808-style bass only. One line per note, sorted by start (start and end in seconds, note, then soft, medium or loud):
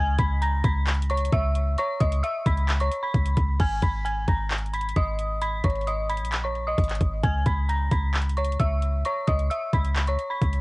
0.00 0.18 C#2 loud
0.19 0.62 C#2 loud
0.64 1.30 C#2 loud
1.32 1.76 C#2 loud
2.01 2.22 C#2 loud
2.46 2.90 C#2 loud
3.14 3.36 C#2 loud
3.37 3.59 C#2 loud
3.60 3.82 G#1 loud
3.82 4.26 G#1 loud
4.28 4.93 G#1 loud
4.96 5.62 G#1 loud
5.64 6.23 G#1 loud
6.21 6.75 A#1 loud
6.78 7.00 G#1 loud
7.01 7.22 G#1 loud
7.23 7.45 C#2 loud
7.46 7.90 C#2 loud
7.91 8.57 C#2 loud
8.60 9.03 C#2 loud
9.28 9.50 C#2 loud
9.73 10.17 C#2 loud
10.42 10.61 C#2 loud